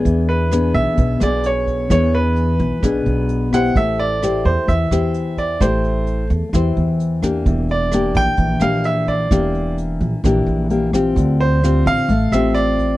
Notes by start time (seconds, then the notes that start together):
Already playing: B3 D4 G#4
0.05 E2 E3, kick, closed hi-hat
0.29 B4, closed hi-hat
0.51 B3 D4 G#4, cross-stick, closed hi-hat
0.74 B1 E5, kick, closed hi-hat
0.97 B1 B2, kick, closed hi-hat
1.20 B1 B3 D4 G#4 D5, cross-stick, closed hi-hat
1.44 C#5, closed hi-hat
1.67 kick, closed hi-hat
1.90 E2 E3 B3 D4 G#4 C#5, kick, cross-stick, closed hi-hat
2.14 B4, closed hi-hat
2.36 closed hi-hat
2.59 B1, kick, closed hi-hat
2.83 B1 B2 B3 D4 G#4, kick, cross-stick, closed hi-hat
3.06 B1, closed hi-hat
3.29 closed hi-hat
3.52 E4 G4 C5 F#5, kick, cross-stick, closed hi-hat
3.76 A1 A3 E5, kick, closed hi-hat
3.99 D5, closed hi-hat
4.23 E4 G4 C5, cross-stick, closed hi-hat
4.45 E2 C5, kick, closed hi-hat
4.68 E2 E3 E5, kick, closed hi-hat
4.91 E2 E4 G4 C5, cross-stick, closed hi-hat
5.14 closed hi-hat
5.37 D5, kick, closed hi-hat
5.60 A1 A3 E4 G4 C5, kick, cross-stick, closed hi-hat
5.84 closed hi-hat
6.07 closed hi-hat
6.30 E2, kick, closed hi-hat
6.53 E2 E3 E4 G4 C5, kick, cross-stick, closed hi-hat
6.77 E2, closed hi-hat
7.00 closed hi-hat
7.23 A#3 D4 G4, kick, cross-stick, closed hi-hat
7.46 E1 E3, kick, closed hi-hat
7.69 D5, closed hi-hat
7.92 A#3 D4 G4, cross-stick, closed hi-hat
8.15 A#1 G5, kick, closed hi-hat
8.37 A#1 E3, kick, closed hi-hat
8.60 A#1 A#3 D4 G4 F5, cross-stick, closed hi-hat
8.84 E5, closed hi-hat
9.07 D5, kick, closed hi-hat
9.31 E1 E3 A#3 D4 G4, kick, cross-stick, closed hi-hat
9.55 closed hi-hat
9.78 closed hi-hat
10.01 A#1, kick, closed hi-hat
10.24 A#1 E3 A#3 D4 G4, kick, cross-stick, closed hi-hat
10.46 A#1, closed hi-hat
10.70 A#3 D4 G4, closed hi-hat
10.93 C4 F4 G4, kick, cross-stick, closed hi-hat
11.16 D2 D3, kick, closed hi-hat
11.41 C5, closed hi-hat
11.64 C4 F4 G4, cross-stick, closed hi-hat
11.86 A1 F5, kick, closed hi-hat
12.09 A1 A3, kick, closed hi-hat
12.32 A1 C4 F4 G4 E5, cross-stick, closed hi-hat
12.54 D5, closed hi-hat
12.79 kick, closed hi-hat